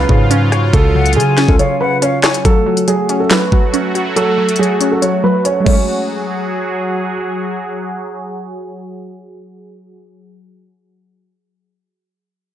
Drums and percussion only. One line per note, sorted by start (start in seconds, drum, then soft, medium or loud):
0.09 kick loud
0.31 closed hi-hat medium
0.52 cross-stick medium
0.52 closed hi-hat medium
0.73 kick loud
0.73 closed hi-hat medium
1.06 closed hi-hat medium
1.13 closed hi-hat medium
1.20 closed hi-hat medium
1.38 cross-stick loud
1.38 snare medium
1.38 closed hi-hat medium
1.49 kick medium
1.59 closed hi-hat medium
2.02 closed hi-hat medium
2.24 cross-stick loud
2.24 snare loud
2.24 clap medium
2.24 closed hi-hat medium
2.34 closed hi-hat medium
2.45 kick loud
2.45 closed hi-hat medium
2.77 closed hi-hat medium
2.88 closed hi-hat medium
3.09 closed hi-hat medium
3.31 snare loud
3.31 clap loud
3.31 closed hi-hat medium
3.52 kick medium
3.74 closed hi-hat medium
3.95 closed hi-hat medium
4.16 closed hi-hat medium
4.49 closed hi-hat medium
4.56 closed hi-hat medium
4.63 closed hi-hat soft
4.81 closed hi-hat medium
5.02 closed hi-hat medium
5.45 closed hi-hat medium
5.66 kick loud
5.66 crash medium